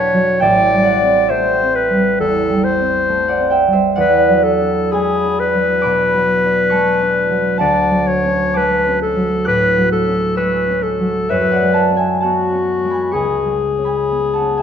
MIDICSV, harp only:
0, 0, Header, 1, 2, 480
1, 0, Start_track
1, 0, Tempo, 887574
1, 224, Time_signature, 4, 2, 24, 8
1, 2146, Tempo, 936037
1, 3106, Tempo, 872093
1, 4066, Tempo, 967742
1, 4546, Tempo, 916031
1, 6946, Tempo, 967742
1, 7686, End_track
2, 0, Start_track
2, 0, Title_t, "Harp"
2, 0, Program_c, 0, 46
2, 0, Note_on_c, 0, 40, 63
2, 0, Note_on_c, 0, 47, 49
2, 0, Note_on_c, 0, 54, 45
2, 0, Note_on_c, 0, 57, 44
2, 0, Note_on_c, 0, 62, 42
2, 0, Note_on_c, 0, 71, 78
2, 0, Note_on_c, 0, 73, 60
2, 0, Note_on_c, 0, 74, 54
2, 0, Note_on_c, 0, 76, 59
2, 0, Note_on_c, 0, 78, 63
2, 0, Note_on_c, 0, 79, 72
2, 0, Note_on_c, 0, 81, 92
2, 0, Note_on_c, 0, 83, 93
2, 67, Note_off_c, 0, 54, 0
2, 73, Note_on_c, 0, 54, 45
2, 208, Note_off_c, 0, 79, 0
2, 213, Note_off_c, 0, 76, 0
2, 215, Note_on_c, 0, 79, 90
2, 219, Note_on_c, 0, 76, 74
2, 226, Note_on_c, 0, 33, 59
2, 236, Note_off_c, 0, 83, 0
2, 239, Note_off_c, 0, 71, 0
2, 239, Note_off_c, 0, 73, 0
2, 240, Note_off_c, 0, 74, 0
2, 240, Note_off_c, 0, 78, 0
2, 241, Note_off_c, 0, 47, 0
2, 242, Note_off_c, 0, 40, 0
2, 245, Note_off_c, 0, 62, 0
2, 247, Note_off_c, 0, 54, 0
2, 388, Note_on_c, 0, 55, 43
2, 451, Note_on_c, 0, 78, 81
2, 455, Note_on_c, 0, 74, 61
2, 546, Note_on_c, 0, 60, 44
2, 687, Note_off_c, 0, 76, 0
2, 694, Note_on_c, 0, 76, 76
2, 698, Note_off_c, 0, 57, 0
2, 700, Note_on_c, 0, 72, 58
2, 705, Note_on_c, 0, 57, 42
2, 864, Note_off_c, 0, 60, 0
2, 868, Note_off_c, 0, 78, 0
2, 871, Note_on_c, 0, 60, 41
2, 1023, Note_off_c, 0, 55, 0
2, 1029, Note_on_c, 0, 55, 43
2, 1185, Note_on_c, 0, 40, 49
2, 1342, Note_off_c, 0, 55, 0
2, 1349, Note_on_c, 0, 55, 43
2, 1499, Note_off_c, 0, 60, 0
2, 1505, Note_on_c, 0, 60, 40
2, 1665, Note_off_c, 0, 57, 0
2, 1672, Note_on_c, 0, 57, 45
2, 1773, Note_off_c, 0, 74, 0
2, 1773, Note_on_c, 0, 78, 73
2, 1780, Note_on_c, 0, 74, 58
2, 1819, Note_off_c, 0, 60, 0
2, 1825, Note_on_c, 0, 60, 41
2, 1850, Note_off_c, 0, 81, 0
2, 1886, Note_off_c, 0, 79, 0
2, 1891, Note_off_c, 0, 76, 0
2, 1893, Note_on_c, 0, 79, 80
2, 1897, Note_on_c, 0, 76, 65
2, 1981, Note_off_c, 0, 55, 0
2, 1984, Note_off_c, 0, 78, 0
2, 1988, Note_on_c, 0, 55, 47
2, 2008, Note_off_c, 0, 76, 0
2, 2011, Note_off_c, 0, 72, 0
2, 2014, Note_on_c, 0, 76, 75
2, 2018, Note_on_c, 0, 72, 56
2, 2104, Note_off_c, 0, 79, 0
2, 2138, Note_off_c, 0, 74, 0
2, 2139, Note_on_c, 0, 78, 95
2, 2142, Note_off_c, 0, 40, 0
2, 2144, Note_on_c, 0, 74, 66
2, 2148, Note_on_c, 0, 40, 60
2, 2161, Note_off_c, 0, 72, 0
2, 2165, Note_off_c, 0, 60, 0
2, 2166, Note_off_c, 0, 33, 0
2, 2166, Note_off_c, 0, 55, 0
2, 2168, Note_off_c, 0, 57, 0
2, 2222, Note_off_c, 0, 76, 0
2, 2310, Note_on_c, 0, 54, 46
2, 2474, Note_on_c, 0, 62, 48
2, 2629, Note_on_c, 0, 83, 79
2, 2636, Note_on_c, 0, 80, 67
2, 2642, Note_on_c, 0, 56, 45
2, 2794, Note_off_c, 0, 62, 0
2, 2800, Note_on_c, 0, 62, 41
2, 2944, Note_off_c, 0, 54, 0
2, 2951, Note_on_c, 0, 54, 41
2, 3094, Note_on_c, 0, 86, 88
2, 3096, Note_off_c, 0, 83, 0
2, 3102, Note_on_c, 0, 83, 72
2, 3108, Note_on_c, 0, 47, 47
2, 3265, Note_off_c, 0, 54, 0
2, 3272, Note_on_c, 0, 54, 41
2, 3430, Note_off_c, 0, 62, 0
2, 3436, Note_on_c, 0, 62, 40
2, 3578, Note_on_c, 0, 85, 78
2, 3582, Note_off_c, 0, 56, 0
2, 3584, Note_on_c, 0, 81, 65
2, 3589, Note_on_c, 0, 56, 45
2, 3745, Note_off_c, 0, 62, 0
2, 3752, Note_on_c, 0, 62, 41
2, 3904, Note_off_c, 0, 54, 0
2, 3910, Note_on_c, 0, 54, 44
2, 4056, Note_off_c, 0, 81, 0
2, 4062, Note_off_c, 0, 78, 0
2, 4062, Note_on_c, 0, 81, 92
2, 4068, Note_on_c, 0, 78, 73
2, 4075, Note_on_c, 0, 38, 54
2, 4082, Note_off_c, 0, 83, 0
2, 4085, Note_off_c, 0, 47, 0
2, 4086, Note_off_c, 0, 40, 0
2, 4205, Note_off_c, 0, 74, 0
2, 4220, Note_off_c, 0, 54, 0
2, 4226, Note_on_c, 0, 54, 41
2, 4390, Note_on_c, 0, 61, 50
2, 4533, Note_off_c, 0, 86, 0
2, 4539, Note_off_c, 0, 81, 0
2, 4539, Note_on_c, 0, 86, 78
2, 4545, Note_on_c, 0, 81, 61
2, 4546, Note_off_c, 0, 56, 0
2, 4552, Note_on_c, 0, 56, 42
2, 4689, Note_off_c, 0, 80, 0
2, 4705, Note_off_c, 0, 61, 0
2, 4711, Note_on_c, 0, 61, 43
2, 4859, Note_off_c, 0, 54, 0
2, 4865, Note_on_c, 0, 54, 40
2, 5015, Note_on_c, 0, 90, 91
2, 5016, Note_off_c, 0, 86, 0
2, 5023, Note_on_c, 0, 86, 68
2, 5027, Note_on_c, 0, 45, 46
2, 5179, Note_off_c, 0, 54, 0
2, 5185, Note_on_c, 0, 54, 44
2, 5337, Note_off_c, 0, 61, 0
2, 5343, Note_on_c, 0, 61, 37
2, 5492, Note_on_c, 0, 88, 84
2, 5493, Note_off_c, 0, 85, 0
2, 5497, Note_off_c, 0, 56, 0
2, 5499, Note_on_c, 0, 85, 60
2, 5503, Note_on_c, 0, 56, 42
2, 5661, Note_off_c, 0, 61, 0
2, 5667, Note_on_c, 0, 61, 44
2, 5783, Note_off_c, 0, 62, 0
2, 5823, Note_off_c, 0, 54, 0
2, 5829, Note_on_c, 0, 54, 38
2, 5980, Note_on_c, 0, 76, 83
2, 5988, Note_on_c, 0, 73, 62
2, 5992, Note_on_c, 0, 42, 55
2, 6003, Note_off_c, 0, 86, 0
2, 6005, Note_off_c, 0, 45, 0
2, 6007, Note_off_c, 0, 38, 0
2, 6085, Note_off_c, 0, 78, 0
2, 6099, Note_on_c, 0, 78, 75
2, 6106, Note_on_c, 0, 74, 55
2, 6143, Note_off_c, 0, 56, 0
2, 6149, Note_on_c, 0, 56, 43
2, 6207, Note_off_c, 0, 81, 0
2, 6211, Note_off_c, 0, 78, 0
2, 6213, Note_on_c, 0, 81, 76
2, 6217, Note_on_c, 0, 78, 62
2, 6300, Note_off_c, 0, 61, 0
2, 6307, Note_on_c, 0, 61, 42
2, 6335, Note_off_c, 0, 76, 0
2, 6335, Note_on_c, 0, 80, 69
2, 6341, Note_on_c, 0, 76, 52
2, 6422, Note_off_c, 0, 81, 0
2, 6460, Note_on_c, 0, 81, 62
2, 6461, Note_off_c, 0, 78, 0
2, 6468, Note_on_c, 0, 78, 50
2, 6472, Note_on_c, 0, 59, 35
2, 6544, Note_off_c, 0, 80, 0
2, 6627, Note_off_c, 0, 61, 0
2, 6633, Note_on_c, 0, 61, 35
2, 6787, Note_off_c, 0, 56, 0
2, 6793, Note_on_c, 0, 56, 32
2, 6825, Note_on_c, 0, 83, 67
2, 6831, Note_on_c, 0, 80, 44
2, 6931, Note_off_c, 0, 85, 0
2, 6937, Note_on_c, 0, 85, 75
2, 6939, Note_off_c, 0, 80, 0
2, 6946, Note_on_c, 0, 80, 57
2, 6950, Note_on_c, 0, 37, 46
2, 6961, Note_off_c, 0, 88, 0
2, 6962, Note_off_c, 0, 81, 0
2, 6963, Note_off_c, 0, 76, 0
2, 6965, Note_off_c, 0, 74, 0
2, 6967, Note_off_c, 0, 42, 0
2, 7026, Note_off_c, 0, 83, 0
2, 7053, Note_off_c, 0, 90, 0
2, 7101, Note_off_c, 0, 56, 0
2, 7107, Note_on_c, 0, 56, 35
2, 7261, Note_off_c, 0, 61, 0
2, 7267, Note_on_c, 0, 61, 37
2, 7299, Note_off_c, 0, 80, 0
2, 7299, Note_on_c, 0, 83, 59
2, 7305, Note_on_c, 0, 80, 49
2, 7422, Note_off_c, 0, 59, 0
2, 7428, Note_on_c, 0, 59, 38
2, 7542, Note_on_c, 0, 81, 61
2, 7544, Note_off_c, 0, 78, 0
2, 7550, Note_on_c, 0, 78, 44
2, 7584, Note_off_c, 0, 61, 0
2, 7590, Note_on_c, 0, 61, 33
2, 7654, Note_off_c, 0, 80, 0
2, 7660, Note_on_c, 0, 80, 61
2, 7667, Note_on_c, 0, 76, 50
2, 7686, Note_off_c, 0, 37, 0
2, 7686, Note_off_c, 0, 54, 0
2, 7686, Note_off_c, 0, 56, 0
2, 7686, Note_off_c, 0, 59, 0
2, 7686, Note_off_c, 0, 61, 0
2, 7686, Note_off_c, 0, 73, 0
2, 7686, Note_off_c, 0, 76, 0
2, 7686, Note_off_c, 0, 78, 0
2, 7686, Note_off_c, 0, 80, 0
2, 7686, Note_off_c, 0, 81, 0
2, 7686, Note_off_c, 0, 83, 0
2, 7686, Note_off_c, 0, 85, 0
2, 7686, End_track
0, 0, End_of_file